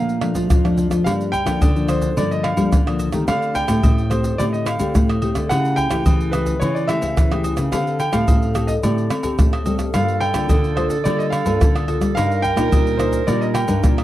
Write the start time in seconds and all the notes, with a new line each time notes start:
Already playing: A#2 F3 A3 A#3 D4 F5
0.09 pandeiro, shaker
0.21 F3 A3 D4, pandeiro, tamborim
0.35 F3, pandeiro, shaker, surdo
0.50 F2 F3, pandeiro, tamborim, shaker, surdo
0.65 F3 A3 D4, pandeiro, tamborim, shaker
0.78 pandeiro, shaker
0.90 F3, pandeiro, tamborim, shaker, surdo
1.04 G2 F3 G3 A#3 D4 F5, pandeiro, tamborim, low agogo, shaker, surdo
1.21 pandeiro, shaker
1.32 G5, pandeiro, low agogo, shaker, surdo
1.46 D3 F3 A#3 D4, pandeiro, tamborim, low agogo, shaker, surdo
1.61 D3, pandeiro, high agogo, shaker, surdo
1.75 F3 A#3 D4, pandeiro, shaker
1.89 C5, pandeiro, tamborim, high agogo, shaker
2.02 pandeiro, shaker, surdo
2.17 G2 D3 F3 A#3 D4 D5, pandeiro, low agogo, shaker, surdo
2.31 D#5, pandeiro, shaker
2.43 F5, pandeiro, tamborim, low agogo
2.57 F3 G3 A#3 D4, pandeiro, low agogo, shaker, surdo
2.72 D3, pandeiro, tamborim, shaker, surdo
2.87 F3 A#3 D4, pandeiro, tamborim, high agogo, shaker
2.99 pandeiro, high agogo, shaker
3.12 D#3 A3 C4 G4, pandeiro, tamborim, shaker, surdo
3.28 D3 F5, pandeiro, tamborim, low agogo, shaker, surdo
3.42 pandeiro, shaker
3.55 G5, pandeiro, low agogo, shaker, surdo
3.68 A2 A3 C4 G4, pandeiro, tamborim, low agogo, shaker, surdo
3.83 A2, pandeiro, high agogo, shaker, surdo
3.98 pandeiro, shaker
4.10 A3 C4 G4 C5, pandeiro, tamborim, high agogo, shaker
4.24 pandeiro, shaker, surdo
4.38 A2 D3 A3 C4 G4 D5, pandeiro, low agogo, shaker, surdo
4.53 D#5, pandeiro, shaker
4.66 F5, pandeiro, tamborim, low agogo, shaker
4.79 D3 A3 C4 G4, pandeiro, low agogo, shaker, surdo
4.95 A2, pandeiro, tamborim, shaker, surdo
5.10 pandeiro, tamborim, high agogo, shaker
5.22 A3 C4 G4, pandeiro, high agogo
5.35 D3, pandeiro, tamborim, shaker, surdo
5.49 C#3 A3 E4 G4 F#5, pandeiro, tamborim, low agogo, shaker, surdo
5.65 pandeiro, shaker
5.76 G5, pandeiro, low agogo, shaker, surdo
5.91 E3 A3 E4 G4, pandeiro, tamborim, low agogo, shaker, surdo
6.06 C#3 E3, pandeiro, high agogo, shaker, surdo
6.20 pandeiro, shaker
6.31 A3 E4 G4 B4, pandeiro, tamborim, high agogo, shaker
6.46 pandeiro, shaker, surdo
6.60 C#3 E3 C#5, pandeiro, low agogo, shaker, surdo
6.75 D5, pandeiro, shaker
6.88 A3 E4 G4 E5, pandeiro, tamborim, low agogo, shaker
7.02 C#3, pandeiro, low agogo, shaker, surdo
7.17 C#3 E3, pandeiro, tamborim, shaker, surdo
7.32 A3 E4 G4, pandeiro, tamborim, high agogo, shaker
7.44 pandeiro, high agogo, shaker
7.57 C#3, pandeiro, tamborim, shaker, surdo
7.72 D3 C4 G4 A4 F5, pandeiro, tamborim, low agogo, shaker, surdo
7.87 pandeiro, shaker
8.00 G5, pandeiro, low agogo, shaker
8.13 A2 C4 G4 A4 F5, pandeiro, tamborim, low agogo, shaker, surdo
8.28 A2, pandeiro, high agogo, shaker, surdo
8.42 pandeiro, shaker
8.55 C4 G4 A4, pandeiro, tamborim, high agogo, shaker
8.67 D#5, pandeiro, shaker, surdo
8.83 A2 D3 C4 G4 A4 D5, pandeiro, low agogo, shaker, surdo
8.98 pandeiro, shaker
9.10 C4, pandeiro, tamborim, low agogo, shaker
9.23 C4 G4 A4, pandeiro, low agogo, shaker, surdo
9.39 A2 A3, pandeiro, tamborim, shaker, surdo
9.53 pandeiro, tamborim, high agogo, shaker
9.66 G3 C4 G4 A4, pandeiro, high agogo, shaker
9.79 pandeiro, tamborim, shaker, surdo
9.94 G2 G3 A#3 F4 A4 F5, pandeiro, tamborim, low agogo, shaker, surdo
10.08 pandeiro, shaker
10.20 G5, pandeiro, low agogo
10.34 D3 A#3 F4 A4, pandeiro, tamborim, low agogo, shaker, surdo
10.49 D3, pandeiro, high agogo, shaker, surdo
10.64 pandeiro, shaker
10.76 A#3 F4 A4 C5, pandeiro, tamborim, high agogo
10.90 pandeiro, shaker, surdo
11.04 D3 G3 A#3 F4 A4 D5, pandeiro, low agogo, shaker, surdo
11.19 D#5, pandeiro, shaker
11.30 F5, pandeiro, tamborim, low agogo, shaker
11.45 G2 A#3 F4 A4, pandeiro, low agogo, shaker, surdo
11.61 D3, pandeiro, tamborim, shaker, surdo
11.76 pandeiro, tamborim, high agogo, shaker
11.88 A#3 F4 A4, pandeiro, high agogo
12.01 G3, pandeiro, tamborim, shaker, surdo
12.15 G2 G3 D4 D#4 A#4 F5, pandeiro, tamborim, low agogo, shaker, surdo
12.31 pandeiro, shaker
12.42 G5, pandeiro, low agogo, shaker, surdo
12.56 A#2 D4 D#4 A#4, pandeiro, tamborim, low agogo, shaker, surdo
12.72 A#2 G3, pandeiro, high agogo, shaker, surdo
12.87 pandeiro, shaker
12.97 D4 D#4 A#4 C5, pandeiro, tamborim, high agogo, shaker
13.13 pandeiro, shaker, surdo
13.27 A#2 G3 D4 D#4 A#4 D5, pandeiro, low agogo, shaker, surdo
13.41 D#5, pandeiro, shaker
13.54 G5, pandeiro, tamborim, low agogo, shaker
13.68 G2 D4 D#4 A#4, pandeiro, low agogo, shaker, surdo
13.83 A#2 G3, pandeiro, tamborim, shaker, surdo
13.98 pandeiro, tamborim, high agogo, shaker